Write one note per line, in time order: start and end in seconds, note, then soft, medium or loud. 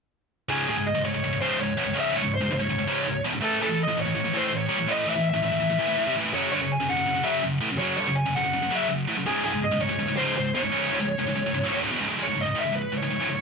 0.49 0.67 C#2 medium
0.49 0.67 G#2 loud
0.49 0.67 C#3 loud
0.49 0.67 G#4 medium
0.68 0.76 D2 medium
0.68 0.77 A2 loud
0.68 0.88 G#4 medium
0.78 0.92 C#2 medium
0.78 0.92 G#2 medium
0.87 1.05 D#5 medium
0.95 1.03 C#2 medium
0.95 1.04 G#2 medium
1.04 1.13 C#2 medium
1.04 1.13 G#2 medium
1.04 1.40 C#5 medium
1.14 1.23 C#2 medium
1.14 1.23 G#2 medium
1.24 1.31 C#2 medium
1.24 1.32 G#2 medium
1.33 1.40 C#2 medium
1.33 1.41 G#2 medium
1.41 1.58 C#2 medium
1.41 1.58 G#2 medium
1.41 1.60 C#3 loud
1.41 1.60 C5 medium
1.59 1.74 C#2 medium
1.59 1.74 G#2 medium
1.59 1.94 C#5 medium
1.77 1.86 E2 medium
1.77 1.86 B2 loud
1.86 1.93 C#2 medium
1.86 1.93 G#2 medium
1.94 2.11 C#2 medium
1.94 2.12 G#2 medium
1.94 2.13 C#3 loud
1.99 2.15 E5 medium
2.11 2.21 D2 medium
2.11 2.22 A2 medium
2.16 2.34 C#5 medium
2.22 2.37 C#2 medium
2.22 2.38 G#2 medium
2.34 2.52 C5 medium
2.41 2.50 C#2 medium
2.41 2.49 G#2 medium
2.51 2.58 C#2 medium
2.51 2.59 G#2 medium
2.51 3.21 C#5 medium
2.60 2.68 C#2 medium
2.60 2.68 G#2 medium
2.69 2.77 C#2 medium
2.69 2.77 G#2 medium
2.78 2.86 C#2 medium
2.78 2.87 G#2 medium
2.87 3.05 C#2 medium
2.87 3.05 G#2 loud
2.87 3.06 C#3 loud
3.07 3.21 C#2 medium
3.07 3.21 G#2 medium
3.24 3.33 E2 medium
3.24 3.33 B2 loud
3.34 3.41 C#2 medium
3.34 3.42 G#2 medium
3.41 3.59 A2 medium
3.41 3.60 E3 medium
3.41 3.60 A3 medium
3.41 3.60 A4 medium
3.61 3.68 A2 medium
3.61 3.69 E3 loud
3.61 3.80 A4 medium
3.69 3.84 A2 medium
3.69 3.84 E3 medium
3.83 3.98 D#5 medium
3.88 3.96 A2 medium
3.88 3.96 E3 medium
3.97 4.04 A2 medium
3.97 4.05 E3 medium
3.97 4.36 C#5 medium
4.06 4.14 A2 medium
4.06 4.14 E3 medium
4.15 4.23 A2 medium
4.15 4.24 E3 medium
4.24 4.33 A2 medium
4.24 4.33 E3 medium
4.34 4.50 A2 medium
4.34 4.51 E3 medium
4.34 4.52 A3 medium
4.34 4.54 C5 medium
4.51 4.66 A2 medium
4.51 4.66 E3 medium
4.57 4.91 C#5 medium
4.69 4.77 C3 loud
4.69 4.78 G3 loud
4.77 4.87 A2 medium
4.77 4.87 E3 medium
4.88 5.05 A2 medium
4.88 5.06 E3 medium
4.88 5.06 A3 medium
4.88 5.09 D#5 medium
5.06 5.15 A2 medium
5.06 5.15 E3 medium
5.06 5.27 E5 medium
5.16 5.30 A2 medium
5.16 5.30 E3 medium
5.30 5.44 E5 loud
5.34 5.41 A2 medium
5.34 5.41 E3 medium
5.42 5.50 A2 medium
5.42 5.51 E3 medium
5.42 6.13 E5 loud
5.51 5.59 A2 medium
5.51 5.59 E3 medium
5.60 5.68 A2 medium
5.60 5.69 E3 medium
5.70 5.78 A2 medium
5.70 5.78 E3 medium
5.79 5.86 A2 medium
5.79 5.88 E3 medium
5.88 5.95 A2 medium
5.88 5.96 E3 loud
5.97 6.06 A2 medium
5.97 6.06 E3 loud
6.07 6.15 C3 medium
6.07 6.15 G3 medium
6.15 6.23 A2 medium
6.15 6.24 E3 medium
6.24 6.33 A2 medium
6.24 6.34 E3 loud
6.33 6.51 F#2 medium
6.33 6.52 C#3 medium
6.33 6.52 F#3 loud
6.33 6.51 C#5 medium
6.51 6.60 G2 medium
6.51 6.61 D3 loud
6.51 6.71 C#5 medium
6.61 6.76 F#2 medium
6.61 6.76 C#3 medium
6.72 6.89 G#5 loud
6.80 6.87 F#2 medium
6.80 6.88 C#3 medium
6.89 6.95 F#2 medium
6.89 6.96 C#3 medium
6.89 7.26 F#5 loud
6.96 7.05 F#2 medium
6.96 7.05 C#3 medium
7.06 7.14 F#2 medium
7.06 7.14 C#3 medium
7.15 7.22 F#2 medium
7.15 7.23 C#3 medium
7.23 7.42 F#2 medium
7.23 7.42 C#3 loud
7.23 7.43 F#3 loud
7.23 7.42 E5 medium
7.43 7.58 F#2 medium
7.43 7.58 C#3 medium
7.61 7.70 A2 medium
7.61 7.70 E3 loud
7.71 7.78 F#2 medium
7.71 7.79 C#3 medium
7.78 7.97 F#2 medium
7.78 7.98 C#3 medium
7.78 7.98 F#3 loud
7.78 7.96 C#5 medium
7.97 8.07 G2 loud
7.97 8.07 D3 medium
7.97 8.16 C#5 medium
8.08 8.22 F#2 medium
8.08 8.22 C#3 medium
8.15 8.35 G#5 loud
8.26 8.35 F#2 medium
8.26 8.35 C#3 medium
8.35 8.43 F#2 medium
8.35 8.43 C#3 medium
8.35 8.72 F#5 medium
8.44 8.52 F#2 medium
8.44 8.52 C#3 medium
8.54 8.61 F#2 medium
8.54 8.62 C#3 medium
8.62 8.69 F#2 medium
8.62 8.71 C#3 medium
8.71 8.88 F#2 medium
8.71 8.88 C#3 medium
8.71 8.90 F#3 loud
8.75 8.90 E5 medium
8.89 9.04 F#2 medium
8.89 9.04 C#3 medium
9.08 9.16 A2 medium
9.08 9.17 E3 loud
9.17 9.26 F#2 medium
9.17 9.26 C#3 medium
9.26 9.44 C#2 loud
9.26 9.44 G#2 medium
9.26 9.44 C#3 loud
9.26 9.43 G#4 medium
9.44 9.53 D2 loud
9.44 9.53 A2 loud
9.44 9.63 G#4 medium
9.53 9.68 C#2 medium
9.53 9.68 G#2 medium
9.64 9.81 D#5 medium
9.71 9.79 C#2 medium
9.71 9.80 G#2 medium
9.80 9.88 C#2 medium
9.80 9.89 G#2 medium
9.80 10.16 C#5 loud
9.89 9.98 C#2 medium
9.89 9.98 G#2 medium
9.99 10.07 C#2 medium
9.99 10.08 G#2 medium
10.08 10.16 C#2 medium
10.08 10.17 G#2 medium
10.16 10.35 C#2 medium
10.16 10.35 G#2 loud
10.16 10.36 C#3 medium
10.16 10.36 C5 loud
10.37 10.51 C#2 medium
10.37 10.51 G#2 medium
10.37 10.54 C5 medium
10.55 10.62 E2 loud
10.55 10.63 B2 loud
10.55 11.78 C#5 medium
10.63 10.71 C#2 medium
10.63 10.71 G#2 medium
10.72 10.90 C#2 medium
10.72 10.90 G#2 medium
10.72 10.90 C#3 loud
10.90 10.99 D2 medium
10.90 10.99 A2 medium
11.00 11.14 C#2 medium
11.00 11.14 G#2 medium
11.18 11.25 C#2 medium
11.18 11.26 G#2 medium
11.27 11.34 C#2 medium
11.27 11.34 G#2 medium
11.35 11.45 C#2 medium
11.35 11.45 G#2 medium
11.46 11.53 C#2 medium
11.46 11.53 G#2 medium
11.54 11.62 C#2 medium
11.54 11.63 G#2 medium
11.64 11.72 C#2 medium
11.64 11.73 G#2 medium
11.73 11.81 D2 loud
11.73 11.82 A2 medium
11.82 11.90 C#2 loud
11.82 11.91 G#2 loud
11.91 12.00 E2 medium
11.91 12.00 B2 loud
12.00 12.08 C#2 loud
12.00 12.09 G#2 medium
12.09 12.16 D2 medium
12.09 12.18 A2 medium
12.17 12.26 C#2 medium
12.17 12.27 G#2 medium
12.23 12.41 C#5 medium
12.27 12.34 C#2 soft
12.27 12.35 G#2 medium
12.35 12.44 C#2 medium
12.35 12.45 G#2 medium
12.41 12.57 D#5 medium
12.46 12.54 C#2 medium
12.46 12.53 G#2 medium
12.55 12.63 G#2 medium
12.55 12.64 D#3 medium
12.59 12.74 E5 medium
12.64 12.71 C#2 medium
12.64 12.72 G#2 medium
12.72 12.87 C#2 medium
12.72 12.88 G#2 medium
12.72 12.93 B4 medium
12.92 13.01 C#2 medium
12.92 13.01 G#2 medium
12.97 13.32 C#5 medium
13.02 13.09 C#2 medium
13.02 13.09 G#2 medium
13.10 13.18 C#2 medium
13.10 13.19 G#2 medium
13.20 13.28 C#2 medium
13.20 13.28 G#2 loud
13.29 13.41 C#2 medium
13.29 13.41 G#2 medium
13.35 13.41 C#5 medium